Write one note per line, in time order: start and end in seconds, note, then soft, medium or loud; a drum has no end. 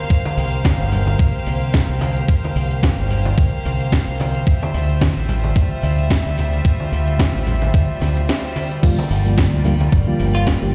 0.00 4.43 A#3 medium
0.00 8.79 C5 medium
0.00 4.43 F5 medium
0.10 4.43 G4 medium
0.10 kick loud
0.10 closed hi-hat soft
0.10 shaker medium
0.25 closed hi-hat soft
0.25 high conga medium
0.25 shaker soft
0.37 0.73 C2 loud
0.37 open hi-hat loud
0.52 closed hi-hat soft
0.52 shaker medium
0.65 kick loud
0.65 snare loud
0.65 closed hi-hat soft
0.65 high conga medium
0.65 shaker medium
0.80 1.14 G1 medium
0.80 closed hi-hat soft
0.80 shaker soft
0.92 open hi-hat loud
0.92 low conga medium
1.07 closed hi-hat soft
1.07 high conga medium
1.07 shaker medium
1.19 1.31 C2 medium
1.19 kick loud
1.19 closed hi-hat soft
1.19 shaker medium
1.35 closed hi-hat soft
1.35 shaker soft
1.46 1.83 C2 medium
1.46 open hi-hat loud
1.46 high conga medium
1.62 closed hi-hat medium
1.62 shaker medium
1.74 kick loud
1.74 snare loud
1.74 closed hi-hat soft
1.74 shaker medium
1.89 2.23 C2 medium
1.89 closed hi-hat soft
1.89 shaker soft
2.01 open hi-hat loud
2.01 high conga medium
2.16 closed hi-hat soft
2.16 shaker medium
2.28 kick loud
2.28 closed hi-hat soft
2.28 shaker medium
2.44 closed hi-hat soft
2.44 high conga medium
2.44 shaker soft
2.56 2.92 C2 medium
2.56 open hi-hat loud
2.71 closed hi-hat medium
2.71 shaker medium
2.83 kick loud
2.83 snare loud
2.83 closed hi-hat soft
2.83 high conga medium
2.83 shaker medium
2.98 3.32 G1 medium
2.98 closed hi-hat soft
2.98 shaker soft
3.10 open hi-hat loud
3.10 low conga medium
3.25 closed hi-hat soft
3.25 high conga medium
3.25 shaker medium
3.38 3.49 C2 medium
3.38 kick loud
3.38 closed hi-hat medium
3.38 shaker medium
3.53 closed hi-hat soft
3.53 shaker soft
3.65 4.01 C2 medium
3.65 open hi-hat medium
3.65 high conga medium
3.80 closed hi-hat medium
3.80 shaker medium
3.92 kick medium
3.92 snare loud
3.92 closed hi-hat medium
3.92 shaker medium
4.07 4.42 C2 medium
4.07 closed hi-hat soft
4.07 shaker soft
4.20 open hi-hat loud
4.20 high conga medium
4.35 closed hi-hat medium
4.35 shaker medium
4.46 10.75 G3 medium
4.46 8.79 F4 medium
4.46 8.79 E5 medium
4.46 kick loud
4.46 closed hi-hat soft
4.46 shaker medium
4.62 closed hi-hat soft
4.62 high conga medium
4.62 shaker soft
4.74 5.10 D2 medium
4.74 open hi-hat loud
4.89 closed hi-hat medium
4.89 shaker medium
5.01 kick medium
5.01 snare loud
5.01 closed hi-hat medium
5.01 high conga medium
5.01 shaker medium
5.17 5.51 A1 medium
5.17 closed hi-hat soft
5.17 shaker soft
5.29 open hi-hat medium
5.29 low conga medium
5.44 closed hi-hat medium
5.44 high conga medium
5.44 shaker medium
5.56 5.67 D2 medium
5.56 kick loud
5.56 closed hi-hat medium
5.56 shaker medium
5.71 closed hi-hat soft
5.71 shaker soft
5.83 6.19 D2 medium
5.83 open hi-hat loud
5.83 high conga medium
5.98 closed hi-hat medium
5.98 shaker medium
6.10 kick medium
6.10 snare loud
6.10 closed hi-hat medium
6.10 shaker medium
6.26 6.60 D2 medium
6.26 closed hi-hat soft
6.26 shaker soft
6.38 open hi-hat medium
6.38 high conga medium
6.53 closed hi-hat medium
6.53 shaker medium
6.65 kick loud
6.65 closed hi-hat soft
6.65 shaker medium
6.80 closed hi-hat soft
6.80 high conga medium
6.80 shaker soft
6.92 7.28 D2 medium
6.92 open hi-hat loud
7.08 closed hi-hat medium
7.08 shaker medium
7.19 kick loud
7.19 snare loud
7.19 closed hi-hat medium
7.19 high conga medium
7.19 shaker medium
7.34 7.69 A1 medium
7.34 closed hi-hat soft
7.34 shaker soft
7.46 open hi-hat loud
7.46 low conga medium
7.62 closed hi-hat medium
7.62 high conga medium
7.62 shaker medium
7.74 7.85 D2 medium
7.74 kick loud
7.74 closed hi-hat medium
7.74 shaker medium
7.89 closed hi-hat soft
7.89 shaker soft
8.01 8.29 D2 medium
8.01 snare soft
8.01 open hi-hat loud
8.01 high conga medium
8.17 closed hi-hat medium
8.17 shaker medium
8.29 snare loud
8.29 closed hi-hat medium
8.29 shaker medium
8.43 closed hi-hat soft
8.43 shaker soft
8.56 open hi-hat loud
8.56 high conga medium
8.71 closed hi-hat medium
8.71 shaker medium
8.83 8.98 D3 medium
8.83 8.98 F3 medium
8.83 8.98 G3 medium
8.83 8.98 A#3 medium
8.83 10.75 F4 medium
8.83 8.98 F4 loud
8.83 10.75 A#4 medium
8.83 10.75 D5 medium
8.83 kick loud
8.83 closed hi-hat medium
8.83 crash medium
8.83 shaker medium
8.98 closed hi-hat soft
8.98 high conga medium
8.98 shaker soft
9.10 9.46 G1 medium
9.10 open hi-hat loud
9.25 9.62 D3 medium
9.25 9.62 F3 medium
9.25 9.62 G3 medium
9.25 9.62 A#3 medium
9.25 9.62 F4 medium
9.25 closed hi-hat medium
9.25 shaker medium
9.37 kick loud
9.37 snare loud
9.37 closed hi-hat medium
9.37 high conga medium
9.37 shaker medium
9.53 9.87 D2 medium
9.53 closed hi-hat soft
9.53 shaker soft
9.64 9.74 D3 medium
9.64 9.74 F3 medium
9.64 9.74 G3 medium
9.64 9.74 A#3 medium
9.64 9.75 F4 medium
9.64 open hi-hat loud
9.64 low conga medium
9.80 closed hi-hat medium
9.80 high conga medium
9.80 shaker medium
9.92 10.03 G1 medium
9.92 kick loud
9.92 closed hi-hat medium
9.92 shaker medium
10.07 10.58 D3 medium
10.07 10.58 F3 medium
10.07 10.58 G3 medium
10.07 10.58 A#3 medium
10.07 10.59 F4 medium
10.07 closed hi-hat soft
10.07 shaker soft
10.19 10.56 G1 medium
10.19 open hi-hat loud
10.19 high conga medium
10.35 10.46 F4 medium
10.35 closed hi-hat medium
10.35 shaker medium
10.47 kick medium
10.47 snare loud
10.47 closed hi-hat medium
10.47 shaker medium
10.61 10.75 G1 medium
10.61 10.75 D3 medium
10.61 10.75 F3 medium
10.61 10.75 G3 medium
10.61 10.75 A#3 medium
10.61 10.75 G4 medium
10.61 closed hi-hat soft
10.61 shaker soft